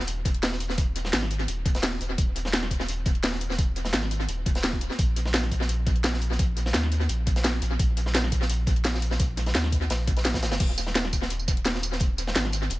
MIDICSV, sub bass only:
0, 0, Header, 1, 2, 480
1, 0, Start_track
1, 0, Tempo, 350877
1, 1064, Time_signature, 4, 2, 24, 8
1, 17502, End_track
2, 0, Start_track
2, 0, Title_t, "Sub bass"
2, 0, Program_c, 0, 38
2, 0, Note_on_c, 0, 27, 98
2, 1526, Note_off_c, 0, 27, 0
2, 1547, Note_on_c, 0, 32, 88
2, 2007, Note_off_c, 0, 32, 0
2, 2027, Note_on_c, 0, 27, 82
2, 2727, Note_off_c, 0, 27, 0
2, 2744, Note_on_c, 0, 27, 88
2, 2961, Note_off_c, 0, 27, 0
2, 2985, Note_on_c, 0, 27, 103
2, 5366, Note_off_c, 0, 27, 0
2, 5383, Note_on_c, 0, 32, 87
2, 5845, Note_off_c, 0, 32, 0
2, 5863, Note_on_c, 0, 27, 81
2, 6094, Note_off_c, 0, 27, 0
2, 6103, Note_on_c, 0, 27, 98
2, 6688, Note_off_c, 0, 27, 0
2, 6824, Note_on_c, 0, 34, 97
2, 9206, Note_off_c, 0, 34, 0
2, 9225, Note_on_c, 0, 39, 92
2, 9686, Note_off_c, 0, 39, 0
2, 9706, Note_on_c, 0, 34, 81
2, 10407, Note_off_c, 0, 34, 0
2, 10423, Note_on_c, 0, 34, 87
2, 10641, Note_off_c, 0, 34, 0
2, 10663, Note_on_c, 0, 34, 100
2, 13045, Note_off_c, 0, 34, 0
2, 13063, Note_on_c, 0, 39, 87
2, 13525, Note_off_c, 0, 39, 0
2, 13542, Note_on_c, 0, 34, 83
2, 14264, Note_on_c, 0, 32, 96
2, 14284, Note_off_c, 0, 34, 0
2, 14388, Note_on_c, 0, 29, 84
2, 14409, Note_off_c, 0, 32, 0
2, 14492, Note_off_c, 0, 29, 0
2, 14502, Note_on_c, 0, 27, 98
2, 16885, Note_off_c, 0, 27, 0
2, 16903, Note_on_c, 0, 32, 83
2, 17365, Note_off_c, 0, 32, 0
2, 17385, Note_on_c, 0, 27, 80
2, 17502, Note_off_c, 0, 27, 0
2, 17502, End_track
0, 0, End_of_file